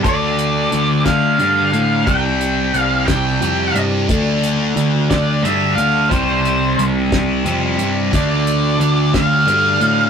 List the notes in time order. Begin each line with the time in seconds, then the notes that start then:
0.03 D2 D3 A3 D4 D5, kick, closed hi-hat
0.39 closed hi-hat
0.72 D2, closed hi-hat
1.05 D2 F5, kick, snare, closed hi-hat
1.39 G2 D3 A3 D4, closed hi-hat
1.73 A2, closed hi-hat
2.06 C2 C3 G3 C4 G5, kick, closed hi-hat
2.41 closed hi-hat
2.74 C2, closed hi-hat
2.79 F5
3.07 C2 G5, kick, snare, closed hi-hat
3.41 F2 C3 G3 C4, closed hi-hat
3.75 G2, closed hi-hat
4.08 D2 D3 A3 D4, kick, closed hi-hat
4.44 closed hi-hat
4.76 D2, closed hi-hat
5.10 D2 D5, kick, snare, closed hi-hat
5.43 G2 D3 A3 D4 E5, closed hi-hat
5.75 D2 F5, closed hi-hat
6.09 C2 C3 G3 C4 C5, kick, closed hi-hat
6.45 closed hi-hat
6.78 C2, closed hi-hat
7.12 C2, kick, snare, closed hi-hat
7.44 F2 C3 G3 C4, closed hi-hat
7.79 G2, closed hi-hat
8.12 D2 D3 A3 D4 D5, kick, closed hi-hat
8.47 closed hi-hat
8.79 D2, closed hi-hat
9.14 D2 F5, kick, snare, closed hi-hat
9.46 G2 D3 A3 D4, closed hi-hat
9.80 A2, closed hi-hat